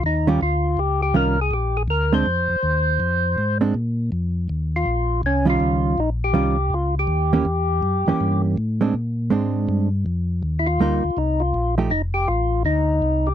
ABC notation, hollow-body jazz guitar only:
X:1
M:4/4
L:1/8
Q:"Swing" 1/4=162
K:Eb
V:1 name="Hollow-body jazz guitar"
z [E,G,_DF] z4 [E,G,DF] z | z3 [A,CD] z4 | z3 [A,CD] z4 | z4 z [E,G,_DF]3 |
z2 [E,G,_DF] z4 [=E,B,DG] | z3 [=E,B,^CG]3 z [A,=CD] | z2 [A,CD]3 z3 | z2 [G,B,E] z4 [F,=A,EG] |
z8 |]